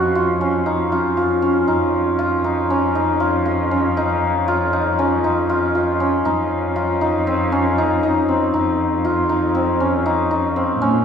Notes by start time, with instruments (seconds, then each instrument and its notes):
Already playing: cello F2, hammered dulcimer C#4 D#4 F#4
0.15 hammered dulcimer F4
0.41 hammered dulcimer C#4
0.66 hammered dulcimer D#4
0.92 hammered dulcimer F4
1.17 hammered dulcimer F4
1.42 hammered dulcimer C#4
1.68 cello F2, hammered dulcimer D#4
2.19 hammered dulcimer F4
2.44 hammered dulcimer D#4
2.70 hammered dulcimer C#4
2.95 hammered dulcimer D#4
3.20 hammered dulcimer F4
3.46 hammered dulcimer F4
3.71 hammered dulcimer C#4
3.97 hammered dulcimer D#4
4.48 hammered dulcimer F4
4.73 hammered dulcimer D#4
4.99 hammered dulcimer C#4
5.24 hammered dulcimer D#4
5.49 hammered dulcimer F4
5.75 hammered dulcimer F4
6.00 hammered dulcimer C#4
6.25 cello F2, hammered dulcimer D#4
6.76 hammered dulcimer F4
7.01 hammered dulcimer D#4
7.27 hammered dulcimer C4
7.52 hammered dulcimer C#4
7.78 hammered dulcimer D#4
8.03 hammered dulcimer D#4
8.29 hammered dulcimer C4
8.54 cello F2, hammered dulcimer D#4
9.05 hammered dulcimer F4
9.29 hammered dulcimer D#4
9.55 hammered dulcimer C4
9.80 hammered dulcimer C#4
10.06 hammered dulcimer D#4
10.31 hammered dulcimer D#4
10.56 hammered dulcimer C4
10.82 cello A#2, hammered dulcimer C#4